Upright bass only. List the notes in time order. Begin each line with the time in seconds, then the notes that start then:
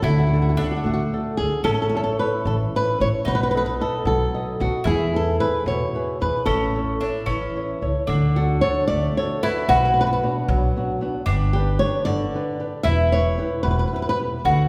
0.03 D2
0.84 D2
1.39 D2
1.64 A1
2.45 A1
3.00 A1
3.26 B1
4.05 B1
4.60 B1
4.85 E2
5.66 E2
6.21 E2
6.47 A1
7.27 A1
7.82 C#2
8.09 D2
8.90 D2
9.69 B1
10.48 B1
11.26 G1
12.06 G1
12.85 E1
13.65 E1
14.45 D2